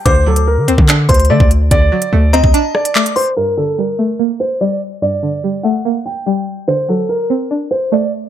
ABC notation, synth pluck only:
X:1
M:4/4
L:1/8
Q:1/4=145
K:Gm
V:1 name="Synth pluck" clef=bass
D, ^F,2 C D2 A,2 | D, ^F, A, C D2 A,2 | G,, D, G, A, B,2 G,2 | G,, D, G, A, B,2 G,2 |
D, ^F,2 C D2 A,2 |]